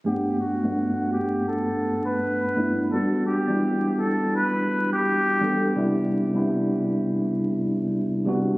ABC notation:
X:1
M:4/4
L:1/16
Q:"Swing 16ths" 1/4=84
K:G
V:1 name="Muted trumpet"
G2 F4 G2 A3 B4- B | A2 G4 A2 B3 G4- G | z16 |]
V:2 name="Tine electric piano"
[G,,A,B,Df]3 [G,,A,B,Df]6- [G,,A,B,Df] z4 [G,,A,B,DE]2 | [E,,G,B,DF]3 [E,,G,B,DE]6- [E,,G,B,DE] z4 [E,,G,B,DA]2 | [C,G,B,DE]3 [C,G,B,DE]6- [C,G,B,DE] z4 [C,G,B,DF]2 |]